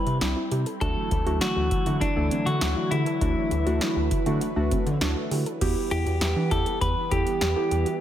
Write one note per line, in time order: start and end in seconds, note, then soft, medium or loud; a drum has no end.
0.00 0.77 G3 medium
0.00 0.77 C4 medium
0.00 0.77 E4 loud
0.00 0.17 B4 loud
0.06 0.20 C3 loud
0.06 closed hi-hat soft
0.21 0.35 C2 loud
0.21 0.63 G3 medium
0.21 0.63 C4 medium
0.21 0.30 D4 medium
0.21 0.63 E4 medium
0.21 snare loud
0.21 closed hi-hat medium
0.36 0.45 E4 medium
0.51 0.65 C3 loud
0.51 0.59 G4 medium
0.51 closed hi-hat medium
0.66 0.75 A4 medium
0.66 closed hi-hat medium
0.81 0.95 D2 loud
0.81 5.57 D3 medium
0.81 5.57 E3 medium
0.81 5.57 F#3 medium
0.81 3.19 A3 medium
0.81 1.13 A3 medium
0.81 1.13 D4 medium
0.81 0.98 D4 loud
0.81 5.57 E4 medium
0.81 1.13 F#4 medium
0.81 1.41 A4 loud
0.81 kick loud
0.81 closed hi-hat medium
1.11 1.25 D2 loud
1.11 1.19 E4 medium
1.11 kick loud
1.11 closed hi-hat medium
1.26 1.40 D2 loud
1.26 1.68 A3 medium
1.26 1.68 D4 medium
1.26 1.34 F#4 medium
1.26 1.68 F#4 medium
1.26 closed hi-hat soft
1.41 1.49 D4 medium
1.41 2.03 F#4 loud
1.41 snare loud
1.41 closed hi-hat medium
1.56 1.70 D2 loud
1.56 1.72 F#4 medium
1.71 kick loud
1.71 closed hi-hat medium
1.86 2.00 D3 medium
1.86 2.07 A3 medium
1.86 2.07 D4 medium
1.86 1.94 E4 medium
1.86 2.07 F#4 medium
1.86 closed hi-hat medium
2.01 2.48 D4 medium
2.01 2.09 E4 medium
2.01 kick loud
2.01 closed hi-hat medium
2.16 2.30 D2 loud
2.16 2.48 A3 medium
2.16 2.24 D4 medium
2.16 2.48 D4 medium
2.16 2.48 A4 medium
2.31 2.47 C4 medium
2.31 closed hi-hat medium
2.46 2.60 D3 loud
2.46 2.93 F#4 medium
2.46 closed hi-hat soft
2.61 2.75 D2 loud
2.61 3.03 A3 medium
2.61 2.69 D4 medium
2.61 3.03 D4 medium
2.61 3.03 F#4 medium
2.61 snare loud
2.61 closed hi-hat medium
2.76 2.84 E4 medium
2.91 3.05 D3 loud
2.91 4.97 E4 medium
2.91 2.99 G4 medium
2.91 closed hi-hat medium
3.06 3.15 A4 medium
3.06 closed hi-hat medium
3.21 3.35 D2 loud
3.21 3.53 A3 medium
3.21 3.38 D4 medium
3.21 3.53 D4 medium
3.21 3.53 F#4 medium
3.21 5.59 B4 medium
3.21 kick loud
3.21 closed hi-hat medium
3.51 3.65 D2 loud
3.51 3.59 E4 medium
3.51 closed hi-hat medium
3.66 3.80 D2 medium
3.66 4.08 A3 medium
3.66 4.08 D4 medium
3.66 3.74 F#4 medium
3.66 4.08 F#4 loud
3.66 closed hi-hat soft
3.81 3.89 D4 medium
3.81 snare loud
3.81 closed hi-hat medium
3.96 4.10 D2 loud
3.96 4.13 F#4 medium
4.11 kick loud
4.11 closed hi-hat medium
4.26 4.40 D3 loud
4.26 4.47 A3 medium
4.26 4.47 D4 medium
4.26 4.34 E4 medium
4.26 4.47 F#4 loud
4.26 closed hi-hat medium
4.41 4.49 E4 medium
4.41 closed hi-hat medium
4.56 4.70 D2 loud
4.56 4.88 A3 medium
4.56 4.88 D4 medium
4.56 4.64 D4 medium
4.56 4.88 F#4 loud
4.71 4.88 C4 medium
4.71 kick medium
4.71 closed hi-hat medium
4.86 5.00 D3 loud
4.86 closed hi-hat soft
5.01 5.15 D2 loud
5.01 5.43 A3 medium
5.01 5.43 D4 medium
5.01 5.09 D4 medium
5.01 5.43 F#4 loud
5.01 snare loud
5.01 closed hi-hat medium
5.16 5.24 E4 medium
5.31 5.45 D3 medium
5.31 5.39 G4 medium
5.31 open hi-hat medium
5.46 5.54 A4 medium
5.46 closed hi-hat medium
5.61 5.75 E2 loud
5.61 8.01 E3 medium
5.61 8.01 G3 medium
5.61 6.24 B3 medium
5.61 7.99 B3 medium
5.61 6.24 E4 medium
5.61 5.78 F#4 loud
5.61 6.24 G4 loud
5.61 kick loud
5.61 closed hi-hat medium
5.61 crash medium
5.91 6.05 E2 loud
5.91 5.99 E4 medium
5.91 6.53 G4 loud
5.91 closed hi-hat medium
6.06 6.20 E2 medium
6.06 6.14 F#4 medium
6.06 closed hi-hat soft
6.21 6.35 E2 medium
6.21 6.29 E4 medium
6.21 snare loud
6.21 closed hi-hat medium
6.36 6.50 E3 loud
6.36 6.44 D4 medium
6.51 6.65 E2 loud
6.51 6.93 B3 medium
6.51 6.93 E4 medium
6.51 6.60 E4 medium
6.51 6.93 G4 medium
6.51 6.79 A4 loud
6.51 kick loud
6.51 closed hi-hat medium
6.66 6.75 G4 medium
6.66 closed hi-hat medium
6.81 6.95 E2 loud
6.81 6.98 G4 medium
6.81 7.12 B4 loud
6.81 kick medium
6.81 closed hi-hat medium
7.11 7.25 E2 loud
7.11 7.43 B3 medium
7.11 7.43 E4 medium
7.11 7.43 G4 medium
7.11 8.01 G4 loud
7.11 7.28 A4 medium
7.11 kick loud
7.11 closed hi-hat medium
7.27 closed hi-hat medium
7.41 7.55 E2 loud
7.41 7.50 G4 medium
7.41 snare loud
7.41 closed hi-hat medium
7.56 7.88 B3 medium
7.56 7.88 E4 medium
7.56 7.88 G4 medium
7.56 7.64 A4 medium
7.71 7.85 E2 loud
7.71 7.79 G4 medium
7.71 closed hi-hat medium
7.86 7.94 F#4 medium
7.86 closed hi-hat medium